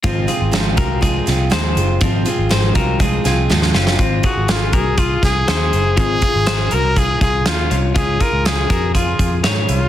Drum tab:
HH |x-x-x-x-x-x-x-x-|x-x-x-x-x-x-----|x-x-x-x-x-x-x-x-|x-x-x-x-x-x-x-x-|
SD |----o-----o-o---|----o-----o-oooo|----o-----o-o---|----o-------o---|
BD |o-----o-o-------|o-----o-o-------|o-o---o-o-o-----|o-o-----o-o-----|

HH |x-x-x-x-x-x-x-x-|
SD |----o-------o---|
BD |o-o---o-o-o-----|